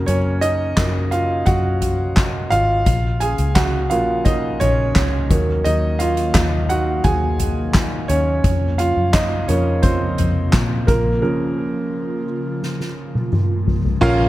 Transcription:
Already playing: C#3 F#3 A#3 A#4
0.06 F#2 C#4 C#5, closed hi-hat
0.41 D#4 D#5, closed hi-hat
0.77 F#2 C#3 F#3 A#3, kick, snare, clap, closed hi-hat
1.11 F4 F5, closed hi-hat
1.46 F#2 F#4 F#5, kick, closed hi-hat
1.82 closed hi-hat, floor tom
2.17 kick, snare, clap, closed hi-hat
2.50 G#1 F4 F5, closed hi-hat
2.86 A#1 C#3 A#3 C#4, kick, closed hi-hat
3.20 G#4 G#5, closed hi-hat
3.38 C#2, closed hi-hat
3.55 F#4 F#5, kick, snare, clap, closed hi-hat
3.90 A#1 C#3 F3 A#3 F4 F5, closed hi-hat
4.25 D#4 D#5, kick, closed hi-hat
4.60 A#1 C#4 C#5, closed hi-hat, floor tom
4.96 C#2, kick, snare, clap, closed hi-hat
5.30 D#2 D#3 F#3 A#3 D#4, kick, closed hi-hat
5.64 D#2 D#4 D#5, closed hi-hat
5.99 F4 F5, closed hi-hat
6.17 closed hi-hat
6.34 D#2, kick, snare, clap, closed hi-hat
6.69 F#4 F#5, closed hi-hat
7.04 D#2 G#4 G#5, kick, closed hi-hat
7.40 closed hi-hat, floor tom
7.74 kick, snare, clap, closed hi-hat
8.08 D#2 C#4 C#5, closed hi-hat
8.44 F2 C#3 F3 F4, kick, closed hi-hat
8.78 F4 F5, closed hi-hat
8.97 F#2
9.13 D#4 D#5, kick, snare, clap, closed hi-hat
9.48 F2 C#3 F3 A#3 C#4 C#5, closed hi-hat
9.82 C4 C5, kick, closed hi-hat
10.18 F2, closed hi-hat, floor tom
10.53 A#2, kick, snare, clap, closed hi-hat
10.87 A#1 A#3 A#4, kick, closed hi-hat
11.22 C#3 F3 A#3 A#4
12.63 snare
12.80 snare
13.15 high tom
13.33 mid tom
13.68 floor tom
13.85 floor tom
14.01 A#1 A#2 F3 A#3 C#4 F4 A#4 F5, kick, crash

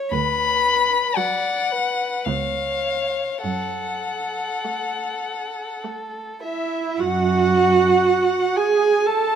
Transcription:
Already playing: C#5
0.11 D2 B4 B5
1.16 F#3 D5 F#5
1.72 B4
2.25 C#2 B3 C#5 F5
3.43 F#2 A4 F#5
4.64 A3
5.84 A3
6.43 E4 E5
7.00 F#2 F#4 F#5
8.57 G#4 G#5
9.06 A4 A5

